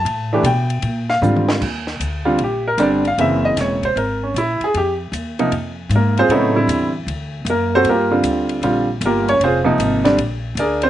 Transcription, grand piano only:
0.00 0.43 A5 medium
0.33 0.44 E3 medium
0.33 0.44 A3 medium
0.33 0.44 D4 medium
0.33 0.44 G4 medium
0.46 1.07 G5 medium
1.10 1.18 F5 loud
1.22 1.61 D3 medium
1.22 1.62 G3 medium
1.22 1.62 C4 medium
1.22 1.62 F4 medium
2.25 2.38 D3 medium
2.25 2.38 G3 medium
2.25 2.38 C4 medium
2.25 2.38 F4 medium
2.44 2.67 G4 medium
2.68 2.80 A#4 medium
2.79 3.02 D3 medium
2.79 3.03 G3 medium
2.79 3.03 C4 medium
2.79 3.03 D4 medium
2.79 3.06 D5 medium
3.08 3.19 F5 medium
3.19 3.78 C#3 medium
3.19 3.78 E3 medium
3.19 3.78 A#3 medium
3.19 3.78 C4 medium
3.19 3.45 E5 medium
3.45 3.57 D#5 medium
3.61 3.84 C#5 medium
3.85 3.97 C5 medium
3.97 4.22 A#4 medium
4.23 4.36 C#4 medium
4.38 4.62 E4 medium
4.64 4.75 G#4 medium
4.77 4.92 G4 medium
5.39 5.51 C3 medium
5.39 5.51 F3 medium
5.39 5.51 A#3 medium
5.39 5.51 D#4 medium
5.95 6.18 A#3 medium
5.95 6.18 A#4 medium
6.19 6.31 C4 medium
6.19 6.31 F4 medium
6.19 6.31 G#4 medium
6.19 6.31 C5 loud
6.30 6.53 C#3 medium
6.30 6.54 F#3 medium
6.30 6.56 A3 medium
6.30 6.53 B3 medium
6.30 6.55 C4 medium
6.30 6.54 D#4 medium
6.30 6.55 E4 medium
6.30 6.55 A4 medium
6.56 6.89 D3 medium
6.56 6.89 G3 medium
6.56 6.90 C4 medium
6.56 6.90 E4 medium
7.50 7.73 A#3 medium
7.50 7.73 A#4 medium
7.75 7.87 C4 medium
7.75 7.87 F#4 medium
7.75 7.87 A4 medium
7.75 7.86 C5 loud
7.89 8.12 A#3 medium
7.89 8.10 F4 medium
7.89 8.12 G4 medium
7.89 8.12 A#4 medium
8.11 8.60 D3 medium
8.11 8.61 G3 medium
8.11 8.61 C4 medium
8.11 8.61 F4 medium
8.64 8.87 D3 medium
8.64 8.86 G3 medium
8.64 8.86 C4 medium
8.64 8.87 F4 medium
9.05 9.29 A#3 medium
9.05 9.29 F4 medium
9.05 9.29 G4 medium
9.05 9.29 A#4 medium
9.29 9.41 C#4 medium
9.29 9.41 C#5 loud
9.44 9.58 C4 medium
9.44 9.59 F4 medium
9.44 9.58 G#4 medium
9.44 9.58 C5 medium
9.64 10.02 C3 medium
9.64 10.02 F3 medium
9.64 10.02 A#3 medium
9.64 10.02 D#4 medium
10.04 10.16 D3 medium
10.04 10.17 G3 medium
10.04 10.17 C4 medium
10.04 10.17 D4 medium
10.59 10.83 D4 medium
10.59 10.83 G#4 medium
10.59 10.83 A#4 medium
10.59 10.83 D5 medium
10.83 10.90 C4 medium
10.83 10.90 C5 medium

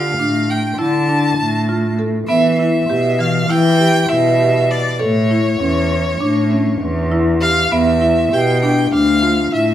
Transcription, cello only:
0.00 0.11 D3 medium
0.19 0.71 A2 medium
0.78 1.31 D3 medium
1.38 2.18 A2 medium
2.29 2.82 E3 medium
2.90 3.42 B2 medium
3.51 4.03 E3 medium
4.10 4.89 B2 medium
5.02 5.54 A2 medium
5.61 6.14 E2 medium
6.22 6.74 A2 medium
6.82 7.60 E2 loud
7.72 8.24 E2 medium
8.32 8.85 B2 medium
8.93 9.45 D2 medium
9.52 9.74 A2 medium

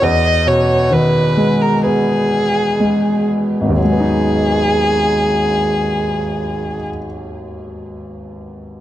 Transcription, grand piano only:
0.02 3.76 E2 soft
0.47 2.27 B2 soft
0.91 2.76 D#3 soft
1.37 2.79 G#3 soft
1.84 3.77 B3 soft
2.80 3.78 G#3 soft
3.61 6.66 G#1 soft
3.69 6.73 D#2 soft
3.76 6.81 F#3 soft
3.84 6.89 G#3 soft
3.92 6.97 B3 soft
4.00 7.05 D#4 soft

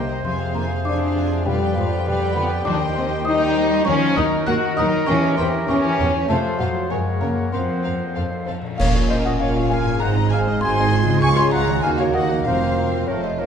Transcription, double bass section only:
0.00 0.20 C2 medium
0.24 2.62 F2 medium
2.66 3.84 D#2 medium
3.87 3.95 D#2 medium
4.17 4.25 D#2 medium
4.48 4.56 D#2 loud
4.78 4.86 D#2 medium
5.08 5.16 E2 medium
5.39 5.47 E2 medium
5.68 5.76 E2 medium
5.99 6.07 E2 medium
6.29 6.37 F2 medium
6.60 6.68 F2 medium
6.91 6.99 F#2 medium
7.22 7.30 F#2 medium
7.54 7.62 F2 medium
7.85 7.93 F2 medium
8.17 8.25 F2 medium
8.49 8.57 F2 medium
8.80 9.33 A#1 medium
9.42 9.95 A#1 medium
10.02 10.55 G#1 medium
10.62 11.16 G#1 loud
11.22 11.77 C#2 medium
11.84 12.39 D#2 loud
12.47 13.02 F1 medium
13.09 13.46 F1 medium

